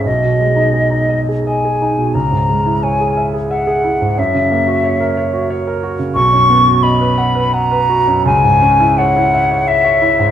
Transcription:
<<
  \new Staff \with { instrumentName = "Flute" } { \time 3/4 \key cis \dorian \tempo 4 = 88 dis''2 gis''4 | ais''4 gis''8 r8 fis''4 | e''2 r4 | cis'''4 b''4 ais''4 |
gis''4 fis''4 e''4 | }
  \new Staff \with { instrumentName = "Grand piano" } { \time 3/4 \key cis \dorian b,,16 b,16 gis16 dis'16 gis'16 dis'16 dis''16 gis'16 dis''16 gis'16 dis'16 b,16 | cis,16 gis,16 gis16 e'16 cis''16 gis'16 e''16 gis'16 e''16 gis'16 e'16 gis,16 | fis,16 cis16 ais16 fis'16 cis''16 ais'16 cis''16 fis'16 cis''16 ais'16 fis'16 cis16 | b,,16 fis,16 b16 fis'16 dis''16 b'16 fis''16 b'16 fis''16 b'16 fis'16 fis,16 |
cis,16 gis,16 cis'16 e'16 cis''16 e'16 e''16 cis''16 e''16 cis''16 e'16 gis,16 | }
>>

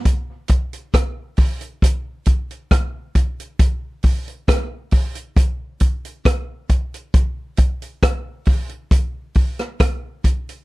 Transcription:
\new DrumStaff \with { instrumentName = "Drums" } \drummode { \time 4/4 \tempo 4 = 68 <hh bd>8 <hh bd>16 hh16 <hh bd ss>8 <hho bd>16 hh16 <hh bd>8 <hh bd>16 hh16 <hh bd ss>8 <hh bd>16 hh16 | <hh bd>8 <hho bd>16 hh16 <hh bd ss>8 <hho bd>16 hh16 <hh bd>8 <hh bd>16 hh16 <hh bd ss>8 <hh bd>16 hh16 | <hh bd>8 <hh bd>16 hh16 <hh bd ss>8 <hho bd>16 hh16 <hh bd>8 <hho bd>16 <hh ss>16 <hh bd ss>8 <hh bd>16 hh16 | }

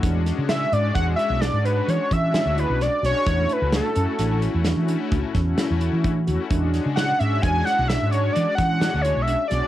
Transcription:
<<
  \new Staff \with { instrumentName = "Analog synth lead" } { \time 7/4 \key e \mixolydian \tempo 4 = 130 r4 e''8 d''8 fis''8 e''8 d''8 b'8 cis''8 e''4 b'8 d''8 cis''8~ | cis''8 b'8 a'4. r1 r8 | r4 fis''8 e''8 gis''8 fis''8 e''8 cis''8 d''8 fis''4 cis''8 e''8 d''8 | }
  \new Staff \with { instrumentName = "Tine electric piano" } { \time 7/4 \key e \mixolydian d'4 d'8 cis'8 d'8 e'8 d'8 d'4 cis'4 e'8 d'8 fis'8 | d'4 d'8 cis'8 d'8 e'8 d'8 d'4 cis'4 e'8 d'8 fis'8 | d'4 d'8 cis'8 d'8 e'8 d'8 d'4 cis'4 e'8 d'8 fis'8 | }
  \new Staff \with { instrumentName = "Analog synth pad" } { \time 7/4 \key e \mixolydian <gis cis' d' fis'>8 <gis cis' d' fis'>8. r16 <gis cis' d' fis'>8 <gis cis' d' fis'>4 r16 <gis cis' d' fis'>4~ <gis cis' d' fis'>16 r16 <gis cis' d' fis'>4. r16 <gis cis' d' fis'>8 | <a cis' e' fis'>8 <a cis' e' fis'>8. r16 <a cis' e' fis'>8 <a cis' e' fis'>4 r16 <a cis' e' fis'>4~ <a cis' e' fis'>16 r16 <a cis' e' fis'>4. r16 <a cis' e' fis'>8 | <gis cis' d' fis'>8 <gis cis' d' fis'>8. r16 <gis cis' d' fis'>8 <gis cis' d' fis'>4 r16 <gis cis' d' fis'>4~ <gis cis' d' fis'>16 r16 <gis cis' d' fis'>4. r16 <gis cis' d' fis'>8 | }
  \new Staff \with { instrumentName = "Fretless electric bass" } { \clef bass \time 7/4 \key e \mixolydian e,8. cis8. gis,8 e,8 r16 b,,8 gis,8. e16 r16 e8. d,8 b,,8 r16 b,,16 r16 | e,8 r16 cis,8 r16 fis,16 r16 a,,8. e,8 e8 r16 cis,16 r16 e,8 r16 e,8 e8. e,16 r16 | e,8. cis8. gis,8 e,8 r16 b,,8 gis,8. e16 r16 e8. d,8 b,,8 r16 b,,16 r16 | }
  \new DrumStaff \with { instrumentName = "Drums" } \drummode { \time 7/4 <hh bd>8 <hh sn>8 <hh sn>8 hh8 <hh bd>8 hh8 <hh sn>8 hh8 hh8 <hh bd>8 <hh sn>8 hh8 <hh sn>8 <hh sn>8 | <hh bd>8 hh8 <hh sn>8 hh8 <hh sn>8 hh8 <hh sn>8 hh8 <hh bd>8 <hh bd sn>8 <hh sn>8 hh8 <hh bd>8 hh8 | <hh bd>8 <hh sn>8 <hh sn>8 hh8 <hh bd>8 <hh sn>8 <hh sn>8 hh8 hh8 <hh bd sn>8 <hh sn>8 hh8 hh8 <hh sn>8 | }
>>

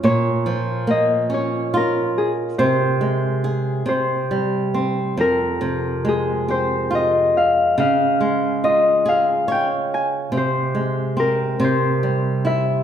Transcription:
<<
  \new Staff \with { instrumentName = "Harp" } { \time 6/8 \key f \minor \tempo 4. = 47 des''4 ees''8 des''8 bes'8 aes'8 | c''4. c''4 r8 | bes'4 aes'8 c''8 ees''8 f''8 | f''4 ees''8 f''8 g''8 aes''8 |
c''4 bes'8 c''4 e''8 | }
  \new Staff \with { instrumentName = "Nylon-string guitar" } { \clef bass \time 6/8 \key f \minor bes,8 f8 bes8 des'8 f'4 | c8 aes8 aes'8 c8 g8 c'8 | f,8 c8 aes8 c'8 f'4 | des8 aes8 f'8 aes'8 des''4 |
c8 aes8 c'8 c8 g8 e'8 | }
>>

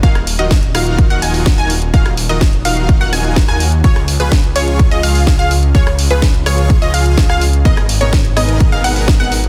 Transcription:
<<
  \new Staff \with { instrumentName = "Synth pluck" } { \time 4/4 \key cis \mixolydian \tempo 4 = 126 eis''16 r8 dis''16 r8 eis''8. fis''16 gis''8. gis''16 r8 | eis''16 r8 dis''16 r8 eis''8. fis''16 gis''8. gis''16 r8 | cis''16 r8 b'16 r8 cis''8. dis''16 eis''8. eis''16 r8 | cis''16 r8 b'16 r8 cis''8. dis''16 eis''8. eis''16 r8 |
dis''16 r8 cis''16 r8 dis''8. eis''16 fis''8. fis''16 r8 | }
  \new Staff \with { instrumentName = "Supersaw synth" } { \time 4/4 \key cis \mixolydian <dis' eis' fis' ais' eis''>16 r8 <dis' eis' fis' ais' dis''>16 r8 <dis' eis' fis' ais' eis''>8. <dis' eis' fis' ais' fis''>16 <dis' eis' fis' ais' gis''>8. <dis' eis' fis' ais' gis''>16 r8 | <dis' eis' fis' ais' eis''>16 r8 <dis' eis' fis' ais' dis''>16 r8 <dis' eis' fis' ais' eis''>8. <dis' eis' fis' ais' fis''>16 <dis' eis' fis' ais' gis''>8. <dis' eis' fis' ais' gis''>16 r8 | <eis' gis' cis''>16 r8 <eis' gis' b'>16 r8 <eis' gis' cis''>8. <eis' gis' dis''>16 <eis' gis' eis''>8. <eis' gis' eis''>16 r8 | <eis' gis' cis''>16 r8 <eis' gis' b'>16 r8 <eis' gis' cis''>8. <eis' gis' dis''>16 <eis' gis' eis''>8. <eis' gis' eis''>16 r8 |
<b dis' gis' ais' dis''>16 r8 <b dis' gis' ais' cis''>16 r8 <b dis' gis' ais' dis''>8. <b dis' gis' ais' eis''>16 <b dis' gis' ais' fis''>8. <b dis' gis' ais' fis''>16 r8 | }
  \new Staff \with { instrumentName = "Detuned saw bass" } { \clef bass \time 4/4 \key cis \mixolydian dis,,8. dis,,8. dis,,8. dis,,16 dis,,8. dis,,8. | dis,,8. dis,,8. dis,,8. dis,,16 dis,,8. dis,8. | cis,8. cis,8. cis,8. cis,16 cis,8. cis,8. | cis,8. cis,8. cis,8. cis,16 cis,8. cis,8. |
gis,,8. gis,,8. gis,,8. gis,,16 gis,,8. gis,,8. | }
  \new DrumStaff \with { instrumentName = "Drums" } \drummode { \time 4/4 <hh bd>16 <hh ss>16 hho16 hh16 <hh bd sn>16 hh16 <hho ss>16 hh16 <hh bd>16 hh16 hho16 hho16 <hh bd sn>16 hh16 hho16 hh16 | <hh bd>16 <hh ss>16 hho16 hh16 <hh bd sn>16 hh16 hho16 hh16 <hh bd>16 hh16 <hho sn>16 hh16 <hh bd sn>16 <hh ss>16 hho16 hh16 | <hh bd>16 <hh ss>16 hho16 hh16 <hh bd sn>16 hh16 hho16 hh16 <hh bd>16 hh16 hho16 hho16 <hh bd sn>16 hh16 hho16 hh16 | <hh bd>16 <hh ss>16 hho16 hh16 <hh bd sn>16 hh16 <hho ss>16 hh16 <hh bd>16 hh16 hho16 hh16 <hh bd sn>16 <hh ss>16 hho16 hh16 |
<hh bd>16 <hh ss>16 hho16 hh16 <hh bd sn>16 hh16 <hho ss>16 hh16 <hh bd>16 hh16 hho16 hho16 <bd sn>16 hh16 hho16 hh16 | }
>>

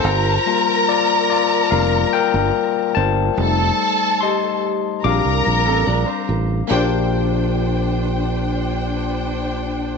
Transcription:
<<
  \new Staff \with { instrumentName = "String section" } { \time 4/4 \key bes \major \tempo 4 = 72 <bes' bes''>2.~ <bes' bes''>8 r8 | <a' a''>4. r8 <bes' bes''>4. r8 | <d' c'' g''>1 | }
  \new Staff \with { instrumentName = "Clean electric guitar" } { \time 4/4 \key bes \major r1 | r2 r8. <c' a'>16 <d' bes'>16 c''8. | r1 | }
  \new Staff \with { instrumentName = "Tine electric piano" } { \time 4/4 \key bes \major <f' c''>8 r8 <f' d''>8 <f' d''>8 <bes' f''>8 <bes' g''>4 <c'' a''>8~ | <c'' a''>8 r8 <ees'' c'''>4 <f'' d'''>4. r8 | <bes d' g' c''>1 | }
  \new Staff \with { instrumentName = "Tine electric piano" } { \time 4/4 \key bes \major r8 <g bes f'>4. <g bes f'>8 r4. | <g a ees'>2 <g c' d'>2 | r1 | }
  \new Staff \with { instrumentName = "Vibraphone" } { \time 4/4 \key bes \major f'8 r2. r8 | r4 g'4. r4. | f'1 | }
  \new Staff \with { instrumentName = "Fingered electric bass" } { \clef bass \time 4/4 \key bes \major g,,8 r4. f,,8 r16 g,,16 r8 g,,8 | f,,8 r4. bes,,16 c,16 bes,,16 a,,16 bes,,16 r16 a,,8 | bes,,1 | }
>>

